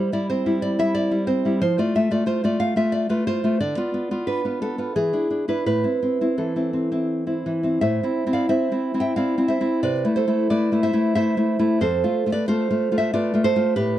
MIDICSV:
0, 0, Header, 1, 2, 480
1, 0, Start_track
1, 0, Key_signature, 0, "minor"
1, 0, Tempo, 657174
1, 1172, Time_signature, 3, 2, 24, 8
1, 2129, Tempo, 676437
1, 3569, Tempo, 717703
1, 5489, Tempo, 684151
1, 5969, Tempo, 662983
1, 8849, Tempo, 641711
1, 9980, End_track
2, 0, Start_track
2, 0, Title_t, "Nylon-string guitar"
2, 0, Program_c, 0, 24
2, 0, Note_on_c, 0, 55, 59
2, 0, Note_on_c, 0, 64, 60
2, 0, Note_on_c, 0, 72, 97
2, 79, Note_off_c, 0, 72, 0
2, 83, Note_off_c, 0, 55, 0
2, 85, Note_off_c, 0, 64, 0
2, 91, Note_on_c, 0, 55, 54
2, 96, Note_on_c, 0, 64, 58
2, 97, Note_on_c, 0, 74, 90
2, 213, Note_off_c, 0, 74, 0
2, 216, Note_on_c, 0, 72, 93
2, 221, Note_on_c, 0, 60, 54
2, 327, Note_off_c, 0, 55, 0
2, 327, Note_off_c, 0, 64, 0
2, 335, Note_on_c, 0, 55, 51
2, 338, Note_on_c, 0, 64, 56
2, 446, Note_off_c, 0, 55, 0
2, 447, Note_off_c, 0, 72, 0
2, 454, Note_on_c, 0, 55, 54
2, 454, Note_on_c, 0, 74, 93
2, 566, Note_off_c, 0, 55, 0
2, 568, Note_off_c, 0, 64, 0
2, 574, Note_off_c, 0, 74, 0
2, 576, Note_on_c, 0, 64, 60
2, 577, Note_on_c, 0, 55, 57
2, 581, Note_on_c, 0, 76, 96
2, 691, Note_on_c, 0, 74, 106
2, 696, Note_off_c, 0, 76, 0
2, 803, Note_off_c, 0, 55, 0
2, 807, Note_off_c, 0, 64, 0
2, 812, Note_on_c, 0, 55, 50
2, 815, Note_on_c, 0, 64, 58
2, 918, Note_off_c, 0, 60, 0
2, 920, Note_off_c, 0, 74, 0
2, 927, Note_on_c, 0, 60, 60
2, 929, Note_on_c, 0, 72, 102
2, 1051, Note_off_c, 0, 55, 0
2, 1056, Note_off_c, 0, 64, 0
2, 1060, Note_on_c, 0, 55, 54
2, 1065, Note_on_c, 0, 64, 56
2, 1161, Note_off_c, 0, 72, 0
2, 1165, Note_off_c, 0, 55, 0
2, 1168, Note_off_c, 0, 64, 0
2, 1170, Note_off_c, 0, 60, 0
2, 1179, Note_on_c, 0, 53, 76
2, 1180, Note_on_c, 0, 72, 105
2, 1294, Note_off_c, 0, 53, 0
2, 1297, Note_off_c, 0, 72, 0
2, 1300, Note_on_c, 0, 57, 54
2, 1306, Note_on_c, 0, 65, 63
2, 1308, Note_on_c, 0, 74, 92
2, 1418, Note_off_c, 0, 57, 0
2, 1420, Note_off_c, 0, 74, 0
2, 1427, Note_on_c, 0, 57, 61
2, 1430, Note_on_c, 0, 76, 102
2, 1532, Note_off_c, 0, 57, 0
2, 1537, Note_off_c, 0, 65, 0
2, 1539, Note_on_c, 0, 57, 56
2, 1540, Note_off_c, 0, 76, 0
2, 1545, Note_on_c, 0, 74, 93
2, 1546, Note_on_c, 0, 65, 65
2, 1645, Note_off_c, 0, 65, 0
2, 1652, Note_on_c, 0, 65, 59
2, 1654, Note_off_c, 0, 74, 0
2, 1657, Note_on_c, 0, 72, 96
2, 1771, Note_off_c, 0, 57, 0
2, 1771, Note_off_c, 0, 72, 0
2, 1775, Note_off_c, 0, 65, 0
2, 1780, Note_on_c, 0, 57, 57
2, 1783, Note_on_c, 0, 65, 60
2, 1788, Note_on_c, 0, 74, 91
2, 1888, Note_off_c, 0, 57, 0
2, 1896, Note_on_c, 0, 57, 53
2, 1897, Note_off_c, 0, 74, 0
2, 1898, Note_on_c, 0, 77, 96
2, 2009, Note_off_c, 0, 57, 0
2, 2011, Note_off_c, 0, 65, 0
2, 2013, Note_off_c, 0, 77, 0
2, 2016, Note_on_c, 0, 57, 53
2, 2021, Note_on_c, 0, 65, 62
2, 2024, Note_on_c, 0, 76, 92
2, 2134, Note_on_c, 0, 74, 92
2, 2135, Note_off_c, 0, 76, 0
2, 2247, Note_off_c, 0, 57, 0
2, 2247, Note_off_c, 0, 65, 0
2, 2251, Note_off_c, 0, 74, 0
2, 2255, Note_on_c, 0, 57, 51
2, 2258, Note_on_c, 0, 65, 57
2, 2259, Note_on_c, 0, 71, 81
2, 2373, Note_off_c, 0, 65, 0
2, 2374, Note_off_c, 0, 71, 0
2, 2381, Note_on_c, 0, 65, 59
2, 2381, Note_on_c, 0, 72, 98
2, 2492, Note_off_c, 0, 57, 0
2, 2497, Note_off_c, 0, 65, 0
2, 2501, Note_on_c, 0, 57, 53
2, 2505, Note_on_c, 0, 65, 62
2, 2604, Note_off_c, 0, 57, 0
2, 2605, Note_off_c, 0, 72, 0
2, 2606, Note_off_c, 0, 65, 0
2, 2618, Note_on_c, 0, 50, 70
2, 2619, Note_on_c, 0, 74, 94
2, 2730, Note_off_c, 0, 50, 0
2, 2737, Note_on_c, 0, 59, 54
2, 2741, Note_on_c, 0, 65, 60
2, 2847, Note_off_c, 0, 59, 0
2, 2856, Note_on_c, 0, 59, 53
2, 2969, Note_off_c, 0, 59, 0
2, 2972, Note_off_c, 0, 65, 0
2, 2977, Note_on_c, 0, 59, 55
2, 2980, Note_on_c, 0, 65, 58
2, 3073, Note_off_c, 0, 74, 0
2, 3090, Note_on_c, 0, 71, 81
2, 3092, Note_on_c, 0, 62, 54
2, 3208, Note_off_c, 0, 59, 0
2, 3214, Note_off_c, 0, 65, 0
2, 3217, Note_on_c, 0, 59, 50
2, 3223, Note_on_c, 0, 65, 49
2, 3318, Note_off_c, 0, 71, 0
2, 3332, Note_off_c, 0, 59, 0
2, 3337, Note_on_c, 0, 69, 82
2, 3340, Note_on_c, 0, 59, 50
2, 3447, Note_off_c, 0, 59, 0
2, 3449, Note_off_c, 0, 65, 0
2, 3454, Note_on_c, 0, 59, 51
2, 3460, Note_on_c, 0, 65, 53
2, 3562, Note_off_c, 0, 59, 0
2, 3563, Note_off_c, 0, 65, 0
2, 3565, Note_off_c, 0, 69, 0
2, 3572, Note_off_c, 0, 62, 0
2, 3577, Note_on_c, 0, 52, 66
2, 3579, Note_on_c, 0, 68, 90
2, 3687, Note_off_c, 0, 52, 0
2, 3694, Note_on_c, 0, 62, 40
2, 3697, Note_on_c, 0, 64, 49
2, 3802, Note_off_c, 0, 62, 0
2, 3810, Note_on_c, 0, 62, 52
2, 3911, Note_off_c, 0, 68, 0
2, 3919, Note_off_c, 0, 62, 0
2, 3922, Note_off_c, 0, 64, 0
2, 3927, Note_on_c, 0, 62, 49
2, 3930, Note_on_c, 0, 64, 52
2, 3932, Note_on_c, 0, 71, 72
2, 4034, Note_off_c, 0, 62, 0
2, 4036, Note_off_c, 0, 64, 0
2, 4041, Note_off_c, 0, 71, 0
2, 4049, Note_on_c, 0, 45, 62
2, 4051, Note_on_c, 0, 71, 83
2, 4165, Note_off_c, 0, 45, 0
2, 4168, Note_on_c, 0, 60, 46
2, 4168, Note_on_c, 0, 64, 48
2, 4284, Note_off_c, 0, 60, 0
2, 4292, Note_on_c, 0, 60, 49
2, 4409, Note_off_c, 0, 60, 0
2, 4412, Note_off_c, 0, 64, 0
2, 4417, Note_on_c, 0, 60, 46
2, 4420, Note_on_c, 0, 64, 50
2, 4514, Note_off_c, 0, 71, 0
2, 4527, Note_on_c, 0, 52, 49
2, 4530, Note_on_c, 0, 69, 62
2, 4643, Note_off_c, 0, 60, 0
2, 4645, Note_off_c, 0, 64, 0
2, 4650, Note_on_c, 0, 60, 41
2, 4654, Note_on_c, 0, 64, 45
2, 4758, Note_off_c, 0, 60, 0
2, 4766, Note_on_c, 0, 60, 46
2, 4881, Note_off_c, 0, 60, 0
2, 4883, Note_off_c, 0, 64, 0
2, 4888, Note_on_c, 0, 60, 42
2, 4893, Note_on_c, 0, 64, 48
2, 5114, Note_off_c, 0, 60, 0
2, 5115, Note_off_c, 0, 64, 0
2, 5122, Note_on_c, 0, 60, 37
2, 5124, Note_on_c, 0, 64, 44
2, 5223, Note_off_c, 0, 69, 0
2, 5243, Note_off_c, 0, 52, 0
2, 5251, Note_on_c, 0, 52, 47
2, 5359, Note_off_c, 0, 60, 0
2, 5367, Note_off_c, 0, 64, 0
2, 5367, Note_on_c, 0, 60, 42
2, 5375, Note_on_c, 0, 64, 49
2, 5475, Note_off_c, 0, 60, 0
2, 5479, Note_off_c, 0, 64, 0
2, 5485, Note_off_c, 0, 52, 0
2, 5487, Note_on_c, 0, 45, 67
2, 5487, Note_on_c, 0, 76, 93
2, 5492, Note_on_c, 0, 72, 71
2, 5639, Note_off_c, 0, 45, 0
2, 5642, Note_on_c, 0, 60, 55
2, 5647, Note_on_c, 0, 64, 55
2, 5797, Note_off_c, 0, 60, 0
2, 5798, Note_off_c, 0, 64, 0
2, 5805, Note_on_c, 0, 60, 54
2, 5807, Note_on_c, 0, 64, 56
2, 5827, Note_off_c, 0, 72, 0
2, 5835, Note_off_c, 0, 76, 0
2, 5850, Note_on_c, 0, 77, 84
2, 5858, Note_on_c, 0, 74, 69
2, 5954, Note_off_c, 0, 64, 0
2, 5956, Note_off_c, 0, 60, 0
2, 5960, Note_off_c, 0, 74, 0
2, 5963, Note_on_c, 0, 60, 56
2, 5963, Note_on_c, 0, 76, 94
2, 5964, Note_off_c, 0, 77, 0
2, 5967, Note_on_c, 0, 64, 57
2, 5969, Note_on_c, 0, 72, 64
2, 6117, Note_off_c, 0, 60, 0
2, 6120, Note_off_c, 0, 64, 0
2, 6126, Note_on_c, 0, 60, 50
2, 6129, Note_on_c, 0, 64, 57
2, 6281, Note_off_c, 0, 60, 0
2, 6284, Note_off_c, 0, 64, 0
2, 6289, Note_on_c, 0, 60, 51
2, 6293, Note_on_c, 0, 64, 56
2, 6305, Note_off_c, 0, 72, 0
2, 6313, Note_off_c, 0, 76, 0
2, 6332, Note_on_c, 0, 79, 93
2, 6339, Note_on_c, 0, 76, 67
2, 6440, Note_off_c, 0, 60, 0
2, 6445, Note_off_c, 0, 79, 0
2, 6447, Note_off_c, 0, 64, 0
2, 6447, Note_off_c, 0, 76, 0
2, 6448, Note_on_c, 0, 77, 86
2, 6449, Note_on_c, 0, 60, 59
2, 6456, Note_on_c, 0, 64, 63
2, 6460, Note_on_c, 0, 74, 64
2, 6596, Note_off_c, 0, 60, 0
2, 6599, Note_off_c, 0, 64, 0
2, 6604, Note_on_c, 0, 60, 52
2, 6608, Note_on_c, 0, 64, 52
2, 6678, Note_off_c, 0, 77, 0
2, 6679, Note_off_c, 0, 74, 0
2, 6681, Note_on_c, 0, 76, 92
2, 6691, Note_on_c, 0, 72, 72
2, 6761, Note_off_c, 0, 60, 0
2, 6765, Note_off_c, 0, 64, 0
2, 6770, Note_on_c, 0, 60, 54
2, 6773, Note_on_c, 0, 64, 60
2, 6914, Note_off_c, 0, 60, 0
2, 6914, Note_off_c, 0, 72, 0
2, 6916, Note_off_c, 0, 64, 0
2, 6916, Note_off_c, 0, 76, 0
2, 6931, Note_on_c, 0, 48, 75
2, 6931, Note_on_c, 0, 74, 96
2, 6936, Note_on_c, 0, 71, 71
2, 7087, Note_off_c, 0, 48, 0
2, 7088, Note_on_c, 0, 57, 58
2, 7090, Note_on_c, 0, 64, 56
2, 7158, Note_off_c, 0, 71, 0
2, 7161, Note_off_c, 0, 74, 0
2, 7170, Note_on_c, 0, 72, 95
2, 7181, Note_on_c, 0, 69, 71
2, 7245, Note_off_c, 0, 57, 0
2, 7249, Note_off_c, 0, 64, 0
2, 7254, Note_on_c, 0, 57, 59
2, 7257, Note_on_c, 0, 64, 60
2, 7402, Note_off_c, 0, 69, 0
2, 7403, Note_off_c, 0, 72, 0
2, 7409, Note_off_c, 0, 57, 0
2, 7411, Note_off_c, 0, 64, 0
2, 7416, Note_on_c, 0, 57, 52
2, 7419, Note_on_c, 0, 64, 55
2, 7419, Note_on_c, 0, 74, 91
2, 7424, Note_on_c, 0, 71, 68
2, 7568, Note_off_c, 0, 57, 0
2, 7573, Note_off_c, 0, 64, 0
2, 7576, Note_on_c, 0, 57, 54
2, 7582, Note_on_c, 0, 64, 60
2, 7642, Note_off_c, 0, 71, 0
2, 7645, Note_off_c, 0, 74, 0
2, 7657, Note_on_c, 0, 76, 92
2, 7663, Note_on_c, 0, 72, 75
2, 7722, Note_off_c, 0, 57, 0
2, 7724, Note_off_c, 0, 64, 0
2, 7731, Note_on_c, 0, 57, 57
2, 7733, Note_on_c, 0, 64, 58
2, 7880, Note_off_c, 0, 72, 0
2, 7882, Note_off_c, 0, 76, 0
2, 7886, Note_off_c, 0, 57, 0
2, 7888, Note_off_c, 0, 64, 0
2, 7891, Note_on_c, 0, 76, 107
2, 7893, Note_on_c, 0, 57, 63
2, 7898, Note_on_c, 0, 72, 80
2, 7899, Note_on_c, 0, 64, 63
2, 8041, Note_off_c, 0, 57, 0
2, 8041, Note_off_c, 0, 64, 0
2, 8048, Note_on_c, 0, 57, 54
2, 8052, Note_on_c, 0, 64, 60
2, 8200, Note_off_c, 0, 64, 0
2, 8201, Note_off_c, 0, 57, 0
2, 8209, Note_on_c, 0, 57, 61
2, 8210, Note_on_c, 0, 64, 66
2, 8343, Note_off_c, 0, 72, 0
2, 8350, Note_off_c, 0, 76, 0
2, 8353, Note_off_c, 0, 57, 0
2, 8353, Note_off_c, 0, 64, 0
2, 8365, Note_on_c, 0, 41, 82
2, 8368, Note_on_c, 0, 72, 98
2, 8374, Note_on_c, 0, 69, 79
2, 8523, Note_off_c, 0, 41, 0
2, 8530, Note_on_c, 0, 57, 60
2, 8534, Note_on_c, 0, 65, 68
2, 8686, Note_off_c, 0, 57, 0
2, 8689, Note_off_c, 0, 65, 0
2, 8693, Note_on_c, 0, 57, 60
2, 8700, Note_on_c, 0, 65, 66
2, 8708, Note_off_c, 0, 69, 0
2, 8715, Note_off_c, 0, 72, 0
2, 8735, Note_off_c, 0, 65, 0
2, 8738, Note_on_c, 0, 74, 100
2, 8748, Note_on_c, 0, 71, 74
2, 8845, Note_off_c, 0, 57, 0
2, 8847, Note_off_c, 0, 74, 0
2, 8850, Note_on_c, 0, 72, 99
2, 8851, Note_off_c, 0, 71, 0
2, 8853, Note_on_c, 0, 57, 56
2, 8856, Note_on_c, 0, 65, 64
2, 8859, Note_on_c, 0, 69, 73
2, 9010, Note_off_c, 0, 65, 0
2, 9011, Note_off_c, 0, 57, 0
2, 9020, Note_on_c, 0, 57, 60
2, 9020, Note_on_c, 0, 65, 65
2, 9168, Note_off_c, 0, 57, 0
2, 9172, Note_off_c, 0, 65, 0
2, 9177, Note_on_c, 0, 57, 55
2, 9181, Note_on_c, 0, 65, 65
2, 9192, Note_off_c, 0, 69, 0
2, 9199, Note_off_c, 0, 72, 0
2, 9224, Note_on_c, 0, 76, 106
2, 9234, Note_on_c, 0, 72, 77
2, 9333, Note_off_c, 0, 57, 0
2, 9333, Note_off_c, 0, 65, 0
2, 9335, Note_off_c, 0, 72, 0
2, 9338, Note_off_c, 0, 76, 0
2, 9340, Note_on_c, 0, 57, 67
2, 9342, Note_on_c, 0, 74, 100
2, 9343, Note_on_c, 0, 65, 74
2, 9348, Note_on_c, 0, 71, 72
2, 9483, Note_off_c, 0, 57, 0
2, 9489, Note_off_c, 0, 65, 0
2, 9492, Note_on_c, 0, 57, 60
2, 9498, Note_on_c, 0, 65, 66
2, 9563, Note_off_c, 0, 71, 0
2, 9565, Note_off_c, 0, 74, 0
2, 9571, Note_on_c, 0, 72, 110
2, 9578, Note_on_c, 0, 69, 82
2, 9651, Note_off_c, 0, 57, 0
2, 9651, Note_off_c, 0, 65, 0
2, 9660, Note_on_c, 0, 57, 64
2, 9661, Note_on_c, 0, 65, 71
2, 9797, Note_off_c, 0, 69, 0
2, 9799, Note_off_c, 0, 57, 0
2, 9799, Note_off_c, 0, 65, 0
2, 9801, Note_off_c, 0, 72, 0
2, 9808, Note_on_c, 0, 45, 83
2, 9809, Note_on_c, 0, 71, 106
2, 9814, Note_on_c, 0, 67, 82
2, 9964, Note_off_c, 0, 45, 0
2, 9980, Note_off_c, 0, 67, 0
2, 9980, Note_off_c, 0, 71, 0
2, 9980, End_track
0, 0, End_of_file